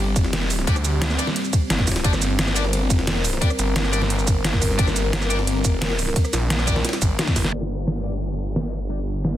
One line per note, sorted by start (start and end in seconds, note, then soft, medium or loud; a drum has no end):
0.00 0.15 G1 medium
0.00 7.49 G3 medium
0.00 7.49 C4 medium
0.00 2.02 G4 loud
0.16 0.66 F1 loud
0.16 kick loud
0.16 closed hi-hat medium
0.16 ride medium
0.16 shaker medium
0.24 snare soft
0.33 snare loud
0.33 closed hi-hat medium
0.33 open hi-hat medium
0.33 ride medium
0.42 snare soft
0.50 open hi-hat medium
0.50 ride medium
0.50 shaker medium
0.59 snare soft
0.67 1.17 D2 loud
0.67 0.74 D4 medium
0.67 0.74 G4 medium
0.67 0.74 D5 medium
0.67 kick loud
0.67 closed hi-hat medium
0.67 ride medium
0.76 cross-stick soft
0.76 ride soft
0.76 shaker soft
0.84 closed hi-hat medium
0.84 ride medium
0.84 shaker medium
1.02 snare loud
1.02 closed hi-hat medium
1.02 ride medium
1.10 cross-stick soft
1.10 shaker soft
1.19 1.25 D4 medium
1.19 1.25 G4 medium
1.19 1.25 D5 loud
1.19 closed hi-hat medium
1.19 ride medium
1.19 shaker medium
1.27 snare soft
1.27 ride soft
1.36 closed hi-hat medium
1.36 ride medium
1.44 shaker soft
1.53 kick loud
1.53 closed hi-hat medium
1.53 ride medium
1.53 shaker medium
1.70 2.03 G1 loud
1.70 snare loud
1.70 closed hi-hat medium
1.70 ride medium
1.79 kick loud
1.79 snare soft
1.87 kick medium
1.87 snare medium
1.87 open hi-hat medium
1.87 ride medium
1.87 shaker medium
1.92 snare medium
1.92 ride medium
1.96 snare loud
1.96 ride medium
2.04 2.89 G1 loud
2.04 2.11 D4 medium
2.04 2.11 G4 medium
2.04 7.51 A#4 loud
2.04 2.11 D5 medium
2.04 kick loud
2.04 closed hi-hat medium
2.04 ride medium
2.13 cross-stick soft
2.13 snare soft
2.13 shaker soft
2.22 closed hi-hat medium
2.22 ride medium
2.22 shaker medium
2.39 snare loud
2.39 closed hi-hat medium
2.39 ride medium
2.47 cross-stick soft
2.47 shaker soft
2.56 2.63 D4 medium
2.56 2.63 G4 medium
2.56 2.63 D5 loud
2.56 closed hi-hat medium
2.56 ride medium
2.56 shaker medium
2.65 snare soft
2.73 closed hi-hat medium
2.73 ride medium
2.90 3.40 F1 loud
2.90 kick loud
2.90 closed hi-hat medium
2.90 ride medium
2.90 shaker medium
2.99 snare soft
3.07 snare loud
3.07 closed hi-hat medium
3.07 open hi-hat medium
3.07 ride medium
3.16 snare soft
3.24 open hi-hat medium
3.24 ride medium
3.24 shaker medium
3.33 snare soft
3.41 3.48 D4 medium
3.41 3.48 G4 medium
3.41 3.48 D5 medium
3.41 kick loud
3.41 closed hi-hat medium
3.41 ride medium
3.50 cross-stick soft
3.50 ride soft
3.50 shaker soft
3.59 4.77 G1 loud
3.59 closed hi-hat medium
3.59 ride medium
3.59 shaker medium
3.76 snare loud
3.76 closed hi-hat loud
3.76 ride medium
3.85 cross-stick soft
3.85 shaker soft
3.93 4.00 D4 medium
3.93 4.00 G4 medium
3.93 4.00 D5 loud
3.93 closed hi-hat medium
3.93 ride medium
3.93 shaker medium
4.02 snare soft
4.02 ride soft
4.10 closed hi-hat medium
4.10 ride medium
4.19 shaker soft
4.27 kick loud
4.27 closed hi-hat medium
4.27 ride medium
4.27 shaker medium
4.44 snare loud
4.44 closed hi-hat medium
4.44 ride medium
4.53 kick loud
4.53 snare soft
4.62 kick medium
4.62 open hi-hat medium
4.62 ride medium
4.62 shaker medium
4.70 snare soft
4.78 5.63 G1 loud
4.78 4.85 D4 medium
4.78 4.85 G4 medium
4.78 4.85 D5 medium
4.78 kick loud
4.78 closed hi-hat loud
4.78 ride medium
4.87 cross-stick soft
4.87 snare soft
4.87 shaker soft
4.96 closed hi-hat medium
4.96 ride medium
4.96 shaker medium
5.13 snare loud
5.13 closed hi-hat loud
5.13 ride medium
5.22 cross-stick soft
5.22 shaker soft
5.30 5.37 D4 medium
5.30 5.37 G4 medium
5.30 5.37 D5 loud
5.30 closed hi-hat medium
5.30 ride medium
5.30 shaker medium
5.39 snare soft
5.47 closed hi-hat loud
5.47 ride medium
5.65 6.15 F1 loud
5.65 kick loud
5.65 closed hi-hat medium
5.65 ride medium
5.65 shaker medium
5.82 snare loud
5.82 closed hi-hat loud
5.82 open hi-hat medium
5.82 ride medium
5.90 snare soft
5.99 open hi-hat medium
5.99 ride medium
5.99 shaker medium
6.07 snare soft
6.16 kick loud
6.16 closed hi-hat loud
6.16 ride medium
6.25 cross-stick soft
6.25 ride soft
6.25 shaker soft
6.33 6.83 A#1 loud
6.33 snare loud
6.33 closed hi-hat medium
6.33 ride medium
6.33 shaker medium
6.50 snare loud
6.50 closed hi-hat loud
6.50 ride medium
6.59 cross-stick soft
6.59 snare soft
6.59 shaker soft
6.67 6.74 D4 medium
6.67 6.74 G4 medium
6.67 6.74 D5 medium
6.67 kick medium
6.67 closed hi-hat medium
6.67 ride medium
6.67 shaker medium
6.76 snare soft
6.76 ride soft
6.85 snare medium
6.85 closed hi-hat loud
6.85 ride medium
6.89 snare medium
6.89 ride medium
6.93 snare loud
6.93 ride medium
6.93 shaker soft
7.02 7.18 G#1 loud
7.02 kick loud
7.02 closed hi-hat medium
7.02 ride medium
7.02 shaker medium
7.19 snare loud
7.19 closed hi-hat loud
7.19 high tom medium
7.19 ride medium
7.27 kick loud
7.27 snare medium
7.27 snare soft
7.27 shaker soft
7.36 7.52 G1 loud
7.36 kick medium
7.36 snare loud
7.36 open hi-hat medium
7.36 ride medium
7.36 shaker medium
7.45 snare medium
7.53 9.37 G1 medium
7.53 9.37 G3 medium
7.53 7.60 D4 medium
7.53 9.37 D4 medium
7.53 9.37 G4 loud
7.53 7.60 G4 medium
7.53 7.60 D5 medium
7.53 downlifter medium
7.62 snare soft
7.70 closed hi-hat medium
7.87 snare loud
7.87 closed hi-hat medium
8.04 8.11 D4 medium
8.04 8.11 G4 medium
8.04 8.11 D5 loud
8.22 closed hi-hat medium
8.39 closed hi-hat medium
8.56 snare loud
8.56 closed hi-hat medium
8.73 closed hi-hat medium
8.90 8.97 D4 medium
8.90 8.97 G4 medium
8.90 8.97 D5 medium
8.90 closed hi-hat medium
9.07 closed hi-hat medium
9.24 snare loud
9.24 closed hi-hat loud